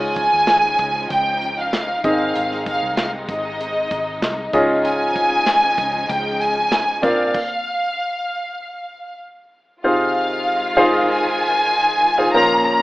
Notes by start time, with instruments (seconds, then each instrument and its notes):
Already playing: fingered electric bass C#2, grand piano G#2 G#3 D#4 F4 C#5, string section C#3 F3 D#4, violin section G#5
0.16 kick, closed hi-hat
0.33 fingered electric bass D#2
0.47 snare, clap, closed hi-hat
0.79 fingered electric bass C#2, kick, closed hi-hat
1.10 fingered electric bass C#2, violin section G5, kick, closed hi-hat
1.42 closed hi-hat
1.59 violin section F5
1.73 snare, clap, closed hi-hat
2.03 fingered electric bass G#1, grand piano G#2 D#3 C4 D#4 G#4 D#5, string section C3 G#3, violin section F5, kick, closed hi-hat
2.36 fingered electric bass G#1, closed hi-hat
2.51 snare
2.66 violin section F5, kick, closed hi-hat
2.83 fingered electric bass C2
2.96 violin section F5, snare, clap, closed hi-hat
3.28 fingered electric bass G#1, violin section D#5, kick, closed hi-hat
3.61 closed hi-hat
3.91 fingered electric bass G#1, kick, closed hi-hat
4.21 fingered electric bass C2, snare, clap, closed hi-hat
4.53 fingered electric bass C#2, grand piano G#2 C#4 F4 G#4 D#5, string section C#3 F3, kick, closed hi-hat
4.84 french horn section F3 F4, violin section G#5, closed hi-hat
5.16 kick, closed hi-hat
5.31 fingered electric bass D#2
5.46 snare, clap, closed hi-hat
5.78 fingered electric bass C#2, kick, closed hi-hat
6.09 fingered electric bass C#2, french horn section G#3 G#4, violin section G5, kick, closed hi-hat
6.41 violin section G#5, closed hi-hat
6.72 snare, clap, closed hi-hat
7.02 fingered electric bass A#1, string section C3 A#3 D4, grand piano C4 F4 A#4 D5, violin section F5, kick, closed hi-hat
7.34 kick, crash
9.83 grand piano C3 D#4 F4 G#4 C5 F5, string section D#3 G#3 F4, violin section F5
10.77 grand piano D#4 F4 G#4 C5 F5
11.10 violin section G#5
12.18 grand piano D#4 F4 G#4 C5 F5
12.31 grand piano A#2 F3 C#4 F4 A#4 C5 F5, string section C#3 A#3 C#4, violin section A#5
12.65 violin section A#5